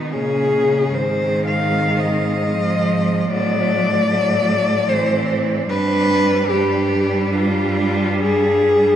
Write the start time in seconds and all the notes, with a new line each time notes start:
Already playing: B2 D#3 B3 D#4
0.13 A#2 C#3 C#4 G#4
0.55 C#3
0.94 G#2 D#3 C4 C5
1.47 F5
1.74 C4
2.00 D#5
2.52 F3 C4
3.30 A2 F#3 B3 D5
3.69 A3
4.09 F#3 A3
4.89 E3 C4 C5
5.69 G2 G3 D4 B4
6.49 G3 D4 G4
7.33 F4
8.21 G#4